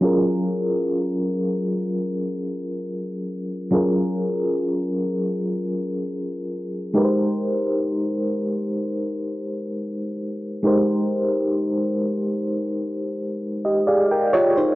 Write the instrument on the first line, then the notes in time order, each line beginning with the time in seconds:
fm electric piano
0.01 F#3 C#4 F4 G#4
0.06 A#4
3.71 F#3 C#4 F4 G#4
3.75 A#4
6.94 G#3 D#4 G4 A#4
6.98 B4
7.04 C5
10.63 G#3 D#4 G4 A#4
10.67 C5
13.65 G4 D#5
13.87 G4 G#4 D5 F5
14.11 A#4 G5
14.33 F4 G4 C#5 D#5
14.57 D#4 C5